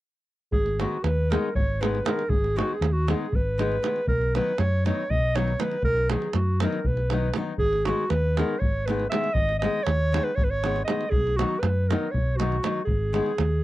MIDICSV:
0, 0, Header, 1, 5, 480
1, 0, Start_track
1, 0, Key_signature, 5, "minor"
1, 0, Tempo, 504202
1, 499, Time_signature, 7, 3, 24, 8
1, 12982, End_track
2, 0, Start_track
2, 0, Title_t, "Clarinet"
2, 0, Program_c, 0, 71
2, 501, Note_on_c, 0, 68, 95
2, 764, Note_on_c, 0, 66, 77
2, 778, Note_off_c, 0, 68, 0
2, 986, Note_on_c, 0, 71, 81
2, 1001, Note_off_c, 0, 66, 0
2, 1244, Note_on_c, 0, 70, 72
2, 1258, Note_off_c, 0, 71, 0
2, 1476, Note_off_c, 0, 70, 0
2, 1482, Note_on_c, 0, 73, 89
2, 1724, Note_on_c, 0, 71, 75
2, 1738, Note_off_c, 0, 73, 0
2, 1961, Note_on_c, 0, 70, 85
2, 1975, Note_off_c, 0, 71, 0
2, 2185, Note_on_c, 0, 68, 91
2, 2199, Note_off_c, 0, 70, 0
2, 2449, Note_on_c, 0, 66, 86
2, 2463, Note_off_c, 0, 68, 0
2, 2607, Note_on_c, 0, 68, 70
2, 2621, Note_off_c, 0, 66, 0
2, 2783, Note_on_c, 0, 66, 87
2, 2798, Note_off_c, 0, 68, 0
2, 2951, Note_on_c, 0, 68, 71
2, 2965, Note_off_c, 0, 66, 0
2, 3193, Note_on_c, 0, 71, 95
2, 3207, Note_off_c, 0, 68, 0
2, 3884, Note_off_c, 0, 71, 0
2, 3889, Note_on_c, 0, 70, 99
2, 4123, Note_off_c, 0, 70, 0
2, 4149, Note_on_c, 0, 71, 90
2, 4375, Note_on_c, 0, 73, 90
2, 4390, Note_off_c, 0, 71, 0
2, 4629, Note_off_c, 0, 73, 0
2, 4633, Note_on_c, 0, 73, 86
2, 4854, Note_on_c, 0, 75, 102
2, 4868, Note_off_c, 0, 73, 0
2, 5097, Note_on_c, 0, 73, 88
2, 5111, Note_off_c, 0, 75, 0
2, 5339, Note_on_c, 0, 71, 80
2, 5353, Note_off_c, 0, 73, 0
2, 5558, Note_off_c, 0, 71, 0
2, 5564, Note_on_c, 0, 70, 109
2, 5800, Note_off_c, 0, 70, 0
2, 5815, Note_on_c, 0, 68, 78
2, 6043, Note_on_c, 0, 66, 81
2, 6058, Note_off_c, 0, 68, 0
2, 6295, Note_off_c, 0, 66, 0
2, 6301, Note_on_c, 0, 70, 72
2, 6537, Note_on_c, 0, 71, 89
2, 6551, Note_off_c, 0, 70, 0
2, 6994, Note_off_c, 0, 71, 0
2, 7222, Note_on_c, 0, 68, 107
2, 7476, Note_on_c, 0, 66, 93
2, 7491, Note_off_c, 0, 68, 0
2, 7712, Note_on_c, 0, 71, 84
2, 7727, Note_off_c, 0, 66, 0
2, 7976, Note_on_c, 0, 70, 72
2, 7991, Note_off_c, 0, 71, 0
2, 8180, Note_on_c, 0, 73, 84
2, 8194, Note_off_c, 0, 70, 0
2, 8435, Note_on_c, 0, 71, 79
2, 8449, Note_off_c, 0, 73, 0
2, 8654, Note_off_c, 0, 71, 0
2, 8659, Note_on_c, 0, 76, 96
2, 8887, Note_on_c, 0, 75, 108
2, 8901, Note_off_c, 0, 76, 0
2, 9122, Note_off_c, 0, 75, 0
2, 9128, Note_on_c, 0, 75, 91
2, 9359, Note_on_c, 0, 73, 105
2, 9373, Note_off_c, 0, 75, 0
2, 9747, Note_on_c, 0, 71, 87
2, 9761, Note_off_c, 0, 73, 0
2, 9856, Note_on_c, 0, 73, 93
2, 9870, Note_off_c, 0, 71, 0
2, 9938, Note_on_c, 0, 71, 71
2, 9953, Note_off_c, 0, 73, 0
2, 9998, Note_on_c, 0, 73, 99
2, 10013, Note_off_c, 0, 71, 0
2, 10320, Note_off_c, 0, 73, 0
2, 10325, Note_on_c, 0, 75, 82
2, 10567, Note_on_c, 0, 68, 96
2, 10581, Note_off_c, 0, 75, 0
2, 10819, Note_on_c, 0, 66, 85
2, 10833, Note_off_c, 0, 68, 0
2, 11041, Note_on_c, 0, 71, 84
2, 11055, Note_off_c, 0, 66, 0
2, 11312, Note_on_c, 0, 70, 72
2, 11326, Note_off_c, 0, 71, 0
2, 11532, Note_on_c, 0, 73, 85
2, 11546, Note_off_c, 0, 70, 0
2, 11773, Note_on_c, 0, 66, 78
2, 11787, Note_off_c, 0, 73, 0
2, 12226, Note_off_c, 0, 66, 0
2, 12231, Note_on_c, 0, 68, 86
2, 12982, Note_off_c, 0, 68, 0
2, 12982, End_track
3, 0, Start_track
3, 0, Title_t, "Nylon-string guitar"
3, 0, Program_c, 1, 24
3, 755, Note_on_c, 1, 51, 66
3, 758, Note_on_c, 1, 56, 57
3, 767, Note_on_c, 1, 59, 57
3, 771, Note_on_c, 1, 63, 63
3, 913, Note_off_c, 1, 51, 0
3, 914, Note_off_c, 1, 56, 0
3, 919, Note_off_c, 1, 59, 0
3, 921, Note_off_c, 1, 63, 0
3, 1239, Note_on_c, 1, 51, 57
3, 1251, Note_on_c, 1, 56, 58
3, 1254, Note_on_c, 1, 59, 53
3, 1261, Note_on_c, 1, 63, 75
3, 1401, Note_off_c, 1, 51, 0
3, 1407, Note_off_c, 1, 59, 0
3, 1408, Note_off_c, 1, 56, 0
3, 1413, Note_off_c, 1, 63, 0
3, 1720, Note_on_c, 1, 51, 58
3, 1725, Note_on_c, 1, 56, 56
3, 1733, Note_on_c, 1, 59, 47
3, 1738, Note_on_c, 1, 63, 66
3, 1880, Note_off_c, 1, 51, 0
3, 1882, Note_off_c, 1, 56, 0
3, 1886, Note_off_c, 1, 59, 0
3, 1889, Note_off_c, 1, 63, 0
3, 1954, Note_on_c, 1, 51, 54
3, 1956, Note_on_c, 1, 56, 49
3, 1965, Note_on_c, 1, 59, 53
3, 1974, Note_on_c, 1, 63, 60
3, 2112, Note_off_c, 1, 51, 0
3, 2112, Note_off_c, 1, 56, 0
3, 2117, Note_off_c, 1, 59, 0
3, 2121, Note_off_c, 1, 63, 0
3, 2437, Note_on_c, 1, 51, 64
3, 2443, Note_on_c, 1, 56, 55
3, 2449, Note_on_c, 1, 59, 59
3, 2454, Note_on_c, 1, 63, 68
3, 2600, Note_off_c, 1, 51, 0
3, 2601, Note_off_c, 1, 56, 0
3, 2606, Note_off_c, 1, 59, 0
3, 2608, Note_off_c, 1, 63, 0
3, 2927, Note_on_c, 1, 51, 64
3, 2936, Note_on_c, 1, 56, 55
3, 2941, Note_on_c, 1, 59, 63
3, 2949, Note_on_c, 1, 63, 67
3, 3090, Note_off_c, 1, 51, 0
3, 3095, Note_off_c, 1, 56, 0
3, 3096, Note_off_c, 1, 59, 0
3, 3101, Note_off_c, 1, 63, 0
3, 3406, Note_on_c, 1, 51, 51
3, 3414, Note_on_c, 1, 56, 54
3, 3423, Note_on_c, 1, 63, 67
3, 3424, Note_on_c, 1, 59, 52
3, 3567, Note_off_c, 1, 51, 0
3, 3570, Note_off_c, 1, 56, 0
3, 3574, Note_off_c, 1, 59, 0
3, 3575, Note_off_c, 1, 63, 0
3, 3642, Note_on_c, 1, 51, 53
3, 3647, Note_on_c, 1, 56, 43
3, 3652, Note_on_c, 1, 59, 47
3, 3659, Note_on_c, 1, 63, 56
3, 3799, Note_off_c, 1, 51, 0
3, 3800, Note_off_c, 1, 56, 0
3, 3804, Note_off_c, 1, 59, 0
3, 3807, Note_off_c, 1, 63, 0
3, 4138, Note_on_c, 1, 51, 57
3, 4142, Note_on_c, 1, 54, 48
3, 4146, Note_on_c, 1, 59, 55
3, 4151, Note_on_c, 1, 63, 67
3, 4292, Note_off_c, 1, 51, 0
3, 4294, Note_off_c, 1, 54, 0
3, 4296, Note_off_c, 1, 59, 0
3, 4299, Note_off_c, 1, 63, 0
3, 4616, Note_on_c, 1, 51, 61
3, 4624, Note_on_c, 1, 54, 54
3, 4632, Note_on_c, 1, 59, 64
3, 4635, Note_on_c, 1, 63, 62
3, 4776, Note_off_c, 1, 51, 0
3, 4780, Note_off_c, 1, 54, 0
3, 4784, Note_off_c, 1, 59, 0
3, 4784, Note_off_c, 1, 63, 0
3, 5091, Note_on_c, 1, 51, 59
3, 5096, Note_on_c, 1, 54, 55
3, 5105, Note_on_c, 1, 59, 49
3, 5110, Note_on_c, 1, 63, 68
3, 5250, Note_off_c, 1, 51, 0
3, 5252, Note_off_c, 1, 54, 0
3, 5256, Note_off_c, 1, 59, 0
3, 5259, Note_off_c, 1, 63, 0
3, 5322, Note_on_c, 1, 51, 52
3, 5326, Note_on_c, 1, 54, 42
3, 5329, Note_on_c, 1, 59, 48
3, 5342, Note_on_c, 1, 63, 56
3, 5479, Note_off_c, 1, 51, 0
3, 5480, Note_off_c, 1, 54, 0
3, 5482, Note_off_c, 1, 59, 0
3, 5488, Note_off_c, 1, 63, 0
3, 5805, Note_on_c, 1, 51, 58
3, 5811, Note_on_c, 1, 54, 47
3, 5817, Note_on_c, 1, 59, 52
3, 5825, Note_on_c, 1, 63, 65
3, 5965, Note_off_c, 1, 51, 0
3, 5968, Note_off_c, 1, 54, 0
3, 5970, Note_off_c, 1, 59, 0
3, 5975, Note_off_c, 1, 63, 0
3, 6299, Note_on_c, 1, 51, 66
3, 6304, Note_on_c, 1, 54, 60
3, 6308, Note_on_c, 1, 59, 59
3, 6316, Note_on_c, 1, 63, 65
3, 6455, Note_off_c, 1, 51, 0
3, 6458, Note_off_c, 1, 54, 0
3, 6460, Note_off_c, 1, 59, 0
3, 6464, Note_off_c, 1, 63, 0
3, 6769, Note_on_c, 1, 51, 58
3, 6774, Note_on_c, 1, 54, 50
3, 6781, Note_on_c, 1, 59, 55
3, 6789, Note_on_c, 1, 63, 55
3, 6926, Note_off_c, 1, 51, 0
3, 6929, Note_off_c, 1, 54, 0
3, 6932, Note_off_c, 1, 59, 0
3, 6936, Note_off_c, 1, 63, 0
3, 7005, Note_on_c, 1, 51, 58
3, 7013, Note_on_c, 1, 54, 45
3, 7020, Note_on_c, 1, 59, 46
3, 7025, Note_on_c, 1, 63, 53
3, 7158, Note_off_c, 1, 51, 0
3, 7162, Note_off_c, 1, 54, 0
3, 7166, Note_off_c, 1, 59, 0
3, 7168, Note_off_c, 1, 63, 0
3, 7491, Note_on_c, 1, 51, 59
3, 7495, Note_on_c, 1, 56, 55
3, 7497, Note_on_c, 1, 59, 52
3, 7507, Note_on_c, 1, 63, 67
3, 7645, Note_off_c, 1, 51, 0
3, 7647, Note_off_c, 1, 56, 0
3, 7648, Note_off_c, 1, 59, 0
3, 7653, Note_off_c, 1, 63, 0
3, 7975, Note_on_c, 1, 51, 61
3, 7982, Note_on_c, 1, 56, 55
3, 7988, Note_on_c, 1, 63, 75
3, 7990, Note_on_c, 1, 59, 59
3, 8131, Note_off_c, 1, 51, 0
3, 8134, Note_off_c, 1, 56, 0
3, 8137, Note_off_c, 1, 59, 0
3, 8138, Note_off_c, 1, 63, 0
3, 8453, Note_on_c, 1, 51, 61
3, 8459, Note_on_c, 1, 56, 58
3, 8466, Note_on_c, 1, 59, 53
3, 8471, Note_on_c, 1, 63, 57
3, 8605, Note_off_c, 1, 51, 0
3, 8608, Note_off_c, 1, 56, 0
3, 8612, Note_off_c, 1, 59, 0
3, 8614, Note_off_c, 1, 63, 0
3, 8680, Note_on_c, 1, 51, 54
3, 8684, Note_on_c, 1, 56, 55
3, 8690, Note_on_c, 1, 59, 50
3, 8695, Note_on_c, 1, 63, 57
3, 8832, Note_off_c, 1, 51, 0
3, 8834, Note_off_c, 1, 56, 0
3, 8837, Note_off_c, 1, 59, 0
3, 8840, Note_off_c, 1, 63, 0
3, 9161, Note_on_c, 1, 51, 55
3, 9167, Note_on_c, 1, 56, 52
3, 9172, Note_on_c, 1, 59, 54
3, 9177, Note_on_c, 1, 63, 61
3, 9317, Note_off_c, 1, 51, 0
3, 9320, Note_off_c, 1, 56, 0
3, 9322, Note_off_c, 1, 59, 0
3, 9325, Note_off_c, 1, 63, 0
3, 9636, Note_on_c, 1, 51, 67
3, 9644, Note_on_c, 1, 56, 53
3, 9649, Note_on_c, 1, 59, 60
3, 9658, Note_on_c, 1, 63, 69
3, 9798, Note_off_c, 1, 51, 0
3, 9802, Note_off_c, 1, 56, 0
3, 9805, Note_off_c, 1, 59, 0
3, 9809, Note_off_c, 1, 63, 0
3, 10126, Note_on_c, 1, 51, 56
3, 10133, Note_on_c, 1, 56, 51
3, 10140, Note_on_c, 1, 63, 66
3, 10141, Note_on_c, 1, 59, 55
3, 10279, Note_off_c, 1, 51, 0
3, 10282, Note_off_c, 1, 56, 0
3, 10285, Note_off_c, 1, 59, 0
3, 10287, Note_off_c, 1, 63, 0
3, 10359, Note_on_c, 1, 51, 52
3, 10366, Note_on_c, 1, 56, 43
3, 10371, Note_on_c, 1, 59, 46
3, 10376, Note_on_c, 1, 63, 52
3, 10509, Note_off_c, 1, 51, 0
3, 10511, Note_off_c, 1, 56, 0
3, 10515, Note_off_c, 1, 59, 0
3, 10518, Note_off_c, 1, 63, 0
3, 10837, Note_on_c, 1, 51, 59
3, 10842, Note_on_c, 1, 54, 58
3, 10848, Note_on_c, 1, 59, 52
3, 10856, Note_on_c, 1, 63, 75
3, 10992, Note_off_c, 1, 51, 0
3, 10995, Note_off_c, 1, 54, 0
3, 10998, Note_off_c, 1, 59, 0
3, 11002, Note_off_c, 1, 63, 0
3, 11330, Note_on_c, 1, 51, 65
3, 11335, Note_on_c, 1, 54, 61
3, 11342, Note_on_c, 1, 59, 63
3, 11347, Note_on_c, 1, 63, 80
3, 11483, Note_off_c, 1, 51, 0
3, 11486, Note_off_c, 1, 54, 0
3, 11487, Note_off_c, 1, 59, 0
3, 11491, Note_off_c, 1, 63, 0
3, 11794, Note_on_c, 1, 51, 56
3, 11799, Note_on_c, 1, 54, 54
3, 11810, Note_on_c, 1, 59, 52
3, 11810, Note_on_c, 1, 63, 67
3, 11950, Note_off_c, 1, 51, 0
3, 11953, Note_off_c, 1, 54, 0
3, 11958, Note_off_c, 1, 59, 0
3, 11959, Note_off_c, 1, 63, 0
3, 12024, Note_on_c, 1, 51, 55
3, 12033, Note_on_c, 1, 54, 42
3, 12037, Note_on_c, 1, 59, 48
3, 12043, Note_on_c, 1, 63, 67
3, 12180, Note_off_c, 1, 51, 0
3, 12184, Note_off_c, 1, 54, 0
3, 12186, Note_off_c, 1, 59, 0
3, 12189, Note_off_c, 1, 63, 0
3, 12498, Note_on_c, 1, 51, 61
3, 12504, Note_on_c, 1, 56, 55
3, 12511, Note_on_c, 1, 59, 55
3, 12518, Note_on_c, 1, 63, 67
3, 12661, Note_off_c, 1, 51, 0
3, 12664, Note_off_c, 1, 56, 0
3, 12668, Note_off_c, 1, 59, 0
3, 12671, Note_off_c, 1, 63, 0
3, 12982, End_track
4, 0, Start_track
4, 0, Title_t, "Fingered electric bass"
4, 0, Program_c, 2, 33
4, 501, Note_on_c, 2, 32, 112
4, 796, Note_off_c, 2, 32, 0
4, 989, Note_on_c, 2, 39, 80
4, 1286, Note_off_c, 2, 39, 0
4, 1475, Note_on_c, 2, 32, 90
4, 1902, Note_off_c, 2, 32, 0
4, 2182, Note_on_c, 2, 32, 111
4, 2480, Note_off_c, 2, 32, 0
4, 2677, Note_on_c, 2, 39, 92
4, 2973, Note_off_c, 2, 39, 0
4, 3164, Note_on_c, 2, 32, 77
4, 3589, Note_off_c, 2, 32, 0
4, 3878, Note_on_c, 2, 35, 101
4, 4171, Note_off_c, 2, 35, 0
4, 4368, Note_on_c, 2, 42, 82
4, 4662, Note_off_c, 2, 42, 0
4, 4855, Note_on_c, 2, 35, 65
4, 5276, Note_off_c, 2, 35, 0
4, 5556, Note_on_c, 2, 35, 107
4, 5849, Note_off_c, 2, 35, 0
4, 6037, Note_on_c, 2, 42, 81
4, 6333, Note_off_c, 2, 42, 0
4, 6524, Note_on_c, 2, 35, 78
4, 6947, Note_off_c, 2, 35, 0
4, 7227, Note_on_c, 2, 32, 106
4, 7522, Note_off_c, 2, 32, 0
4, 7715, Note_on_c, 2, 39, 83
4, 8009, Note_off_c, 2, 39, 0
4, 8202, Note_on_c, 2, 32, 64
4, 8624, Note_off_c, 2, 32, 0
4, 8901, Note_on_c, 2, 32, 100
4, 9195, Note_off_c, 2, 32, 0
4, 9397, Note_on_c, 2, 39, 89
4, 9688, Note_off_c, 2, 39, 0
4, 9879, Note_on_c, 2, 32, 75
4, 10299, Note_off_c, 2, 32, 0
4, 10583, Note_on_c, 2, 35, 115
4, 10875, Note_off_c, 2, 35, 0
4, 11069, Note_on_c, 2, 42, 91
4, 11362, Note_off_c, 2, 42, 0
4, 11558, Note_on_c, 2, 35, 84
4, 11978, Note_off_c, 2, 35, 0
4, 12263, Note_on_c, 2, 32, 92
4, 12554, Note_off_c, 2, 32, 0
4, 12746, Note_on_c, 2, 39, 84
4, 12982, Note_off_c, 2, 39, 0
4, 12982, End_track
5, 0, Start_track
5, 0, Title_t, "Davul"
5, 498, Note_on_c, 9, 43, 81
5, 593, Note_off_c, 9, 43, 0
5, 627, Note_on_c, 9, 37, 23
5, 722, Note_off_c, 9, 37, 0
5, 758, Note_on_c, 9, 37, 57
5, 853, Note_off_c, 9, 37, 0
5, 992, Note_on_c, 9, 37, 61
5, 1087, Note_off_c, 9, 37, 0
5, 1255, Note_on_c, 9, 37, 72
5, 1350, Note_off_c, 9, 37, 0
5, 1486, Note_on_c, 9, 43, 96
5, 1582, Note_off_c, 9, 43, 0
5, 1740, Note_on_c, 9, 37, 64
5, 1835, Note_off_c, 9, 37, 0
5, 1854, Note_on_c, 9, 37, 25
5, 1950, Note_off_c, 9, 37, 0
5, 1962, Note_on_c, 9, 37, 81
5, 2057, Note_off_c, 9, 37, 0
5, 2084, Note_on_c, 9, 37, 31
5, 2179, Note_off_c, 9, 37, 0
5, 2191, Note_on_c, 9, 43, 98
5, 2286, Note_off_c, 9, 43, 0
5, 2326, Note_on_c, 9, 37, 27
5, 2422, Note_off_c, 9, 37, 0
5, 2462, Note_on_c, 9, 37, 67
5, 2557, Note_off_c, 9, 37, 0
5, 2688, Note_on_c, 9, 37, 63
5, 2783, Note_off_c, 9, 37, 0
5, 2935, Note_on_c, 9, 37, 68
5, 3031, Note_off_c, 9, 37, 0
5, 3171, Note_on_c, 9, 43, 86
5, 3266, Note_off_c, 9, 43, 0
5, 3421, Note_on_c, 9, 37, 51
5, 3516, Note_off_c, 9, 37, 0
5, 3539, Note_on_c, 9, 37, 18
5, 3634, Note_off_c, 9, 37, 0
5, 3655, Note_on_c, 9, 37, 59
5, 3750, Note_off_c, 9, 37, 0
5, 3770, Note_on_c, 9, 37, 20
5, 3865, Note_off_c, 9, 37, 0
5, 3885, Note_on_c, 9, 43, 71
5, 3980, Note_off_c, 9, 43, 0
5, 4013, Note_on_c, 9, 37, 17
5, 4108, Note_off_c, 9, 37, 0
5, 4141, Note_on_c, 9, 37, 60
5, 4236, Note_off_c, 9, 37, 0
5, 4363, Note_on_c, 9, 37, 58
5, 4458, Note_off_c, 9, 37, 0
5, 4625, Note_on_c, 9, 37, 58
5, 4721, Note_off_c, 9, 37, 0
5, 4858, Note_on_c, 9, 43, 84
5, 4953, Note_off_c, 9, 43, 0
5, 5099, Note_on_c, 9, 37, 63
5, 5194, Note_off_c, 9, 37, 0
5, 5215, Note_on_c, 9, 37, 21
5, 5310, Note_off_c, 9, 37, 0
5, 5329, Note_on_c, 9, 37, 67
5, 5424, Note_off_c, 9, 37, 0
5, 5440, Note_on_c, 9, 37, 26
5, 5535, Note_off_c, 9, 37, 0
5, 5548, Note_on_c, 9, 43, 83
5, 5643, Note_off_c, 9, 43, 0
5, 5681, Note_on_c, 9, 37, 21
5, 5776, Note_off_c, 9, 37, 0
5, 5803, Note_on_c, 9, 37, 69
5, 5898, Note_off_c, 9, 37, 0
5, 5920, Note_on_c, 9, 37, 27
5, 6015, Note_off_c, 9, 37, 0
5, 6029, Note_on_c, 9, 37, 68
5, 6124, Note_off_c, 9, 37, 0
5, 6286, Note_on_c, 9, 37, 75
5, 6381, Note_off_c, 9, 37, 0
5, 6402, Note_on_c, 9, 37, 25
5, 6497, Note_off_c, 9, 37, 0
5, 6517, Note_on_c, 9, 43, 70
5, 6612, Note_off_c, 9, 43, 0
5, 6637, Note_on_c, 9, 37, 23
5, 6732, Note_off_c, 9, 37, 0
5, 6759, Note_on_c, 9, 37, 59
5, 6855, Note_off_c, 9, 37, 0
5, 6984, Note_on_c, 9, 37, 68
5, 7079, Note_off_c, 9, 37, 0
5, 7217, Note_on_c, 9, 43, 69
5, 7313, Note_off_c, 9, 43, 0
5, 7357, Note_on_c, 9, 37, 24
5, 7452, Note_off_c, 9, 37, 0
5, 7477, Note_on_c, 9, 37, 66
5, 7572, Note_off_c, 9, 37, 0
5, 7713, Note_on_c, 9, 37, 63
5, 7808, Note_off_c, 9, 37, 0
5, 7970, Note_on_c, 9, 37, 65
5, 8065, Note_off_c, 9, 37, 0
5, 8203, Note_on_c, 9, 43, 83
5, 8298, Note_off_c, 9, 43, 0
5, 8451, Note_on_c, 9, 37, 54
5, 8546, Note_off_c, 9, 37, 0
5, 8564, Note_on_c, 9, 37, 24
5, 8659, Note_off_c, 9, 37, 0
5, 8681, Note_on_c, 9, 37, 74
5, 8776, Note_off_c, 9, 37, 0
5, 8794, Note_on_c, 9, 37, 26
5, 8889, Note_off_c, 9, 37, 0
5, 8900, Note_on_c, 9, 43, 85
5, 8995, Note_off_c, 9, 43, 0
5, 9034, Note_on_c, 9, 37, 22
5, 9129, Note_off_c, 9, 37, 0
5, 9159, Note_on_c, 9, 37, 65
5, 9254, Note_off_c, 9, 37, 0
5, 9392, Note_on_c, 9, 37, 69
5, 9487, Note_off_c, 9, 37, 0
5, 9656, Note_on_c, 9, 37, 72
5, 9751, Note_off_c, 9, 37, 0
5, 9879, Note_on_c, 9, 43, 94
5, 9974, Note_off_c, 9, 43, 0
5, 10126, Note_on_c, 9, 37, 62
5, 10222, Note_off_c, 9, 37, 0
5, 10244, Note_on_c, 9, 37, 25
5, 10339, Note_off_c, 9, 37, 0
5, 10356, Note_on_c, 9, 37, 72
5, 10451, Note_off_c, 9, 37, 0
5, 10478, Note_on_c, 9, 37, 29
5, 10574, Note_off_c, 9, 37, 0
5, 10592, Note_on_c, 9, 43, 86
5, 10688, Note_off_c, 9, 43, 0
5, 10729, Note_on_c, 9, 37, 24
5, 10824, Note_off_c, 9, 37, 0
5, 10845, Note_on_c, 9, 37, 64
5, 10941, Note_off_c, 9, 37, 0
5, 11070, Note_on_c, 9, 37, 68
5, 11166, Note_off_c, 9, 37, 0
5, 11334, Note_on_c, 9, 37, 67
5, 11429, Note_off_c, 9, 37, 0
5, 11562, Note_on_c, 9, 43, 87
5, 11657, Note_off_c, 9, 43, 0
5, 11802, Note_on_c, 9, 37, 61
5, 11898, Note_off_c, 9, 37, 0
5, 11921, Note_on_c, 9, 37, 25
5, 12016, Note_off_c, 9, 37, 0
5, 12033, Note_on_c, 9, 37, 71
5, 12128, Note_off_c, 9, 37, 0
5, 12254, Note_on_c, 9, 43, 73
5, 12350, Note_off_c, 9, 43, 0
5, 12509, Note_on_c, 9, 37, 53
5, 12604, Note_off_c, 9, 37, 0
5, 12626, Note_on_c, 9, 37, 22
5, 12721, Note_off_c, 9, 37, 0
5, 12741, Note_on_c, 9, 37, 66
5, 12836, Note_off_c, 9, 37, 0
5, 12982, End_track
0, 0, End_of_file